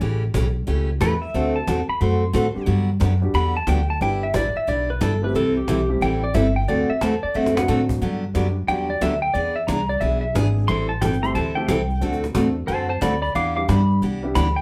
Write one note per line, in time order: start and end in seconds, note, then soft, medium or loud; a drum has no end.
0.01 0.33 A1 medium
0.01 0.22 C#3 medium
0.01 0.23 E3 medium
0.01 0.23 A3 medium
0.01 0.23 C#4 medium
0.01 0.23 G4 medium
0.01 cajon bass soft
0.01 cajon slap soft
0.34 0.67 B1 loud
0.34 0.46 C#3 medium
0.34 0.46 E3 medium
0.34 0.46 A3 medium
0.34 0.46 C#4 medium
0.34 0.46 G4 medium
0.34 cajon bass soft
0.34 cajon slap medium
0.67 1.00 C#2 medium
0.67 0.89 C#3 medium
0.67 0.89 E3 medium
0.67 0.89 A3 medium
0.67 0.89 C#4 medium
0.67 0.89 G4 medium
0.67 cajon bass soft
0.67 cajon slap soft
1.01 1.33 E2 loud
1.01 1.12 C#3 medium
1.01 1.13 E3 medium
1.01 1.13 A3 medium
1.01 1.13 C#4 medium
1.01 1.13 G4 medium
1.01 1.22 B4 medium
1.01 cajon bass soft
1.01 cajon slap medium
1.22 1.54 E5 medium
1.22 cajon slap soft
1.34 1.67 D2 medium
1.34 1.56 D3 medium
1.34 1.53 A3 medium
1.34 1.56 A3 medium
1.34 1.53 C4 medium
1.34 1.56 C4 medium
1.34 1.54 D4 medium
1.34 1.56 F#4 medium
1.34 1.54 F#4 medium
1.34 1.54 A4 medium
1.34 1.56 A4 medium
1.34 cajon bass soft
1.34 cajon slap soft
1.56 1.88 A5 medium
1.67 1.87 E2 loud
1.67 1.79 D3 medium
1.67 1.79 A3 medium
1.67 1.79 C4 medium
1.67 1.79 F#4 medium
1.67 1.80 A4 medium
1.67 cajon bass soft
1.67 cajon slap medium
1.88 2.01 B5 medium
1.88 muted upright bass stroke soft
2.01 2.33 F#2 medium
2.01 2.22 D3 medium
2.01 2.22 A3 medium
2.01 2.23 C4 medium
2.01 2.23 F#4 medium
2.01 2.23 A4 medium
2.01 2.66 C6 medium
2.01 cajon bass soft
2.01 cajon slap soft
2.33 2.54 A2 loud
2.33 2.45 D3 medium
2.33 2.45 A3 medium
2.33 2.46 C4 medium
2.33 2.46 F#4 medium
2.33 2.46 A4 medium
2.33 cajon bass soft
2.33 cajon slap medium
2.54 2.66 G3 medium
2.54 2.66 B3 medium
2.54 2.66 D4 medium
2.54 2.66 F#4 medium
2.54 2.67 G4 medium
2.54 muted upright bass stroke soft
2.54 cajon slap soft
2.66 3.00 G2 medium
2.66 2.89 D3 medium
2.66 2.89 F#3 medium
2.66 2.89 B3 medium
2.66 2.89 D4 medium
2.66 2.89 G4 medium
2.66 cajon bass soft
2.66 cajon slap soft
3.00 3.33 F#2 loud
3.00 3.12 D3 medium
3.00 3.12 F#3 medium
3.00 3.12 B3 medium
3.00 3.12 D4 medium
3.00 3.12 G4 medium
3.00 cajon bass soft
3.00 cajon slap medium
3.21 3.33 G3 medium
3.21 3.33 B3 medium
3.21 3.33 D4 medium
3.21 3.33 F#4 medium
3.21 3.34 G4 medium
3.21 cajon slap soft
3.34 3.67 E2 medium
3.34 3.56 D3 medium
3.34 3.56 F#3 medium
3.34 3.56 B3 medium
3.34 3.56 D4 medium
3.34 3.56 G4 medium
3.34 3.55 B5 loud
3.34 cajon bass soft
3.34 cajon slap soft
3.57 3.68 A5 medium
3.67 4.00 D2 loud
3.67 3.79 D3 medium
3.67 3.79 F#3 medium
3.67 3.79 B3 medium
3.67 3.79 D4 medium
3.67 3.80 G4 medium
3.67 3.89 G5 medium
3.67 cajon bass soft
3.67 cajon slap medium
3.90 4.01 A5 medium
4.00 4.34 G1 medium
4.00 4.20 G3 medium
4.00 4.23 G3 medium
4.00 4.20 B3 medium
4.00 4.23 D4 medium
4.00 4.20 D4 medium
4.00 4.23 E4 medium
4.00 4.21 E4 medium
4.00 4.21 G4 medium
4.00 4.23 B4 medium
4.00 4.22 G5 loud
4.00 cajon bass soft
4.00 cajon slap soft
4.23 4.35 E5 loud
4.34 4.54 A1 loud
4.34 4.46 G3 medium
4.34 4.46 D4 medium
4.34 4.46 E4 medium
4.34 4.46 B4 medium
4.34 4.56 D5 medium
4.34 cajon bass soft
4.34 cajon slap medium
4.55 4.68 E5 medium
4.55 muted upright bass stroke soft
4.55 cajon slap soft
4.67 5.00 B1 medium
4.67 4.89 G3 medium
4.67 4.89 D4 medium
4.67 4.90 E4 medium
4.67 4.90 B4 medium
4.67 4.89 D5 medium
4.67 cajon bass soft
4.67 cajon slap soft
4.90 5.02 B4 medium
5.01 5.34 G1 loud
5.01 5.12 G3 medium
5.01 5.13 D4 medium
5.01 5.13 E4 medium
5.01 5.23 A4 medium
5.01 5.13 B4 medium
5.01 cajon bass soft
5.01 cajon slap medium
5.22 5.33 G3 medium
5.22 5.33 A3 medium
5.22 5.33 C4 medium
5.22 5.34 E4 medium
5.22 5.34 G4 medium
5.22 5.35 B4 medium
5.34 5.67 C2 medium
5.34 5.56 C3 medium
5.34 5.57 E3 medium
5.34 5.57 G3 medium
5.34 5.57 C4 medium
5.34 5.57 E4 medium
5.34 5.56 A4 loud
5.34 5.57 A4 medium
5.34 cajon bass soft
5.34 cajon slap soft
5.57 5.89 G4 medium
5.67 6.00 B1 loud
5.67 5.80 C3 medium
5.67 5.80 E3 medium
5.67 5.80 G3 medium
5.67 5.80 C4 medium
5.67 5.80 E4 medium
5.67 5.80 A4 medium
5.67 cajon bass soft
5.67 cajon slap medium
5.89 6.00 G3 medium
5.89 6.00 A3 medium
5.89 6.00 C4 medium
5.89 6.00 E4 medium
5.89 6.00 G4 medium
6.01 6.34 A1 medium
6.01 6.23 C3 medium
6.01 6.23 E3 medium
6.01 6.23 G3 medium
6.01 6.23 C4 medium
6.01 6.23 E4 medium
6.01 6.24 A4 medium
6.01 6.23 G5 loud
6.01 cajon bass soft
6.01 cajon slap soft
6.24 6.35 D5 medium
6.34 6.67 G1 loud
6.34 6.46 C3 medium
6.34 6.46 E3 medium
6.34 6.46 G3 medium
6.34 6.46 C4 medium
6.34 6.46 E4 medium
6.34 6.46 A4 medium
6.34 6.55 E5 medium
6.34 cajon bass soft
6.34 cajon slap medium
6.56 6.68 G5 medium
6.68 6.88 D2 medium
6.68 6.90 D3 medium
6.68 6.90 A3 medium
6.68 6.90 C4 medium
6.68 6.90 F#4 medium
6.68 6.90 A4 medium
6.68 6.89 D5 medium
6.68 cajon bass soft
6.68 cajon slap soft
6.89 7.01 E5 medium
6.89 muted upright bass stroke soft
7.01 7.21 E2 medium
7.01 7.13 D3 medium
7.01 7.13 A3 medium
7.01 7.13 C4 medium
7.01 7.14 F#4 medium
7.01 7.14 A4 medium
7.01 7.22 A5 medium
7.01 cajon bass soft
7.01 cajon slap medium
7.23 7.35 D5 medium
7.23 muted upright bass stroke soft
7.34 7.67 F#2 medium
7.34 7.56 D3 medium
7.34 7.56 A3 medium
7.34 7.56 C4 medium
7.34 7.57 F#4 medium
7.34 7.57 A4 medium
7.34 7.56 E5 medium
7.46 cajon slap medium
7.55 7.98 F#3 medium
7.55 7.99 A3 medium
7.55 7.99 C4 medium
7.55 7.99 D4 medium
7.55 7.99 F#4 medium
7.55 7.68 F#5 loud
7.55 cajon slap medium
7.68 8.01 A2 medium
7.68 7.80 D3 medium
7.68 7.80 A3 medium
7.68 7.80 C4 medium
7.68 7.80 F#4 medium
7.68 7.80 A4 medium
7.68 cajon slap medium
7.89 cajon bass medium
8.01 8.34 G2 medium
8.01 8.23 D3 medium
8.01 8.23 F#3 medium
8.01 8.23 B3 medium
8.01 8.23 D4 medium
8.01 8.24 G4 medium
8.01 cajon bass soft
8.34 8.67 F#2 loud
8.34 8.46 D3 medium
8.34 8.47 F#3 medium
8.34 8.54 G3 medium
8.34 8.54 B3 medium
8.34 8.47 B3 medium
8.34 8.54 D4 medium
8.34 8.47 D4 medium
8.34 8.54 F#4 medium
8.34 8.54 G4 medium
8.34 8.47 G4 medium
8.34 cajon bass soft
8.34 cajon slap medium
8.67 9.00 E2 medium
8.67 8.90 D3 medium
8.67 8.90 F#3 medium
8.67 8.87 G3 medium
8.67 8.87 B3 medium
8.67 8.90 B3 medium
8.67 8.87 D4 medium
8.67 8.90 D4 medium
8.67 8.88 F#4 medium
8.67 8.88 G4 medium
8.67 8.90 G4 medium
8.67 8.89 G5 loud
8.67 cajon bass soft
8.67 cajon slap soft
8.90 9.01 D5 medium
9.01 9.34 D2 medium
9.01 9.13 D3 medium
9.01 9.13 F#3 medium
9.01 9.13 B3 medium
9.01 9.13 D4 medium
9.01 9.13 G4 medium
9.01 9.22 E5 medium
9.01 cajon bass soft
9.01 cajon slap medium
9.22 9.34 G5 loud
9.34 9.67 E2 medium
9.34 9.56 E3 medium
9.34 9.56 B3 medium
9.34 9.57 D4 medium
9.34 9.57 G#4 medium
9.34 9.55 D5 loud
9.34 cajon bass soft
9.34 cajon slap soft
9.56 9.68 E5 medium
9.67 10.00 C2 loud
9.67 9.80 E3 medium
9.67 9.80 B3 medium
9.67 9.80 D4 medium
9.67 9.80 G#4 medium
9.67 9.88 A#5 medium
9.67 cajon bass soft
9.67 cajon slap medium
9.89 10.01 D5 medium
9.89 cajon slap soft
10.01 10.34 B1 medium
10.01 10.23 E3 soft
10.01 10.23 B3 medium
10.01 10.23 D4 medium
10.01 10.23 G#4 medium
10.01 10.20 E5 loud
10.01 cajon bass soft
10.01 cajon slap soft
10.21 10.34 E5 loud
10.34 10.68 G#1 loud
10.34 10.46 E3 medium
10.34 10.68 G#3 medium
10.34 10.68 B3 medium
10.34 10.47 B3 medium
10.34 10.68 D4 medium
10.34 10.47 D4 medium
10.34 10.69 E4 medium
10.34 10.69 G#4 medium
10.34 10.47 G#4 medium
10.34 cajon bass soft
10.34 cajon slap medium
10.57 cajon slap soft
10.68 11.01 A1 medium
10.68 10.90 E3 medium
10.68 10.90 G3 medium
10.68 10.90 C4 medium
10.68 10.90 E4 medium
10.68 10.90 A4 medium
10.68 10.88 C6 loud
10.68 cajon bass soft
10.68 cajon slap soft
10.89 11.01 A5 medium
11.01 11.34 G1 loud
11.01 11.13 E3 medium
11.01 11.13 G3 medium
11.01 11.13 C4 medium
11.01 11.14 E4 medium
11.01 11.14 A4 medium
11.01 11.22 G5 loud
11.01 cajon bass soft
11.01 cajon slap medium
11.13 cajon slap soft
11.22 11.33 A3 medium
11.22 11.33 C4 medium
11.22 11.34 E4 medium
11.22 11.34 G4 medium
11.22 11.34 A4 medium
11.22 11.35 C6 loud
11.22 cajon slap soft
11.35 11.67 D2 medium
11.35 11.57 E3 medium
11.35 11.57 G3 medium
11.35 11.57 C4 medium
11.35 11.57 E4 medium
11.35 11.57 A4 medium
11.35 11.56 A5 medium
11.35 cajon bass soft
11.35 cajon slap soft
11.55 11.67 A3 medium
11.55 11.67 C4 medium
11.55 11.67 E4 medium
11.55 11.67 G4 medium
11.55 11.68 A4 medium
11.55 11.67 G5 loud
11.68 12.01 C2 loud
11.68 11.80 E3 medium
11.68 11.80 G3 medium
11.68 11.80 C4 medium
11.68 11.80 E4 medium
11.68 11.80 A4 medium
11.68 12.01 G5 medium
11.68 cajon bass soft
11.68 cajon slap medium
11.90 cajon slap soft
12.00 12.34 D2 medium
12.00 12.23 D3 medium
12.00 12.20 A3 medium
12.00 12.23 A3 medium
12.00 12.20 C4 medium
12.00 12.23 C4 medium
12.00 12.21 D4 medium
12.00 12.21 F#4 medium
12.00 12.24 F#4 medium
12.00 12.21 A4 medium
12.00 12.24 A4 medium
12.00 cajon bass soft
12.00 cajon slap soft
12.13 cajon slap soft
12.24 cajon slap soft
12.34 12.67 E2 medium
12.34 12.46 D3 medium
12.34 12.54 A3 medium
12.34 12.46 A3 medium
12.34 12.54 C4 medium
12.34 12.47 C4 medium
12.34 12.54 D4 medium
12.34 12.54 F#4 medium
12.34 12.47 F#4 medium
12.34 12.54 A4 medium
12.34 12.47 A4 medium
12.34 cajon bass soft
12.34 cajon slap medium
12.67 13.01 F#2 medium
12.67 12.90 D3 medium
12.67 12.90 A3 medium
12.67 12.90 C4 medium
12.67 12.90 F#4 medium
12.67 12.90 A4 medium
12.67 12.88 C5 medium
12.67 12.89 A5 medium
12.67 cajon bass soft
12.67 cajon slap soft
12.89 13.01 C5 medium
12.89 13.02 A5 medium
13.01 13.34 D2 loud
13.01 13.13 D3 medium
13.01 13.13 A3 medium
13.01 13.13 C4 medium
13.01 13.14 F#4 medium
13.01 13.14 A4 medium
13.01 13.21 D5 medium
13.01 13.21 B5 medium
13.01 cajon bass soft
13.01 cajon slap medium
13.22 13.34 D5 medium
13.22 13.35 B5 medium
13.22 cajon slap soft
13.35 13.67 E2 medium
13.35 13.57 E3 medium
13.35 13.57 B3 medium
13.35 13.57 D4 medium
13.35 13.57 G4 medium
13.35 13.55 F5 loud
13.35 13.55 D6 loud
13.35 cajon bass soft
13.35 cajon slap soft
13.56 13.99 G3 medium
13.56 14.00 B3 medium
13.56 14.00 D4 medium
13.56 14.00 E4 medium
13.56 14.00 G4 medium
13.56 13.68 F5 medium
13.56 13.68 D6 medium
13.68 14.01 G2 loud
13.68 13.80 E3 medium
13.68 13.80 B3 medium
13.68 13.80 D4 medium
13.68 13.81 G4 medium
13.68 14.01 B5 loud
13.68 cajon bass soft
13.68 cajon slap medium
13.91 cajon slap soft
14.02 14.34 C2 medium
14.02 14.23 E3 medium
14.02 14.24 B3 medium
14.02 14.24 D4 medium
14.02 14.24 G4 medium
14.02 cajon bass soft
14.02 cajon slap soft
14.23 14.34 G3 medium
14.23 14.34 B3 medium
14.23 14.34 D4 medium
14.23 14.34 E4 medium
14.23 14.35 G4 medium
14.35 14.62 D2 medium
14.35 14.47 E3 medium
14.35 14.47 B3 medium
14.35 14.47 D4 medium
14.35 14.47 G4 loud
14.35 14.56 B5 medium
14.35 cajon bass soft
14.35 cajon slap medium
14.56 14.62 G5 medium
14.56 cajon slap soft